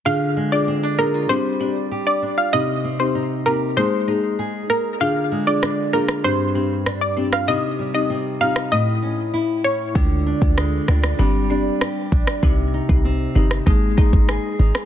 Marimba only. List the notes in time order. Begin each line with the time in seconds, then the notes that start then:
0.05 D4 F4 G#4
0.52 D4 F4 G#4
0.98 D4 F4 G#4
1.29 C4 D4 G4
1.60 C4 D4 G4
2.53 C4 D#4 G4
2.99 C4 D#4 G4
3.46 C4 D#4 G4
3.77 A#3 D#4 G#4
4.08 A#3 D#4 G#4
5.00 D4 F4 G#4
5.47 D4 F4 G#4
5.93 D4 F4 G#4
6.24 C4 D4 G4
6.55 C4 D4 G4
7.17 C4 D4 G4
7.48 C4 D#4 G4
7.94 C4 D#4 G4
8.41 C4 D#4 G4
9.95 G#3 D4 F4
10.42 G#3 D4 F4
10.88 G#3 D4 F4
11.19 C4 D4 G4
11.50 C4 D4 G4
12.43 C4 D#4 G4
12.89 C4 D#4 G4
13.35 C4 D#4 G4
13.66 A#3 D#4 G#4
13.97 A#3 D#4 G#4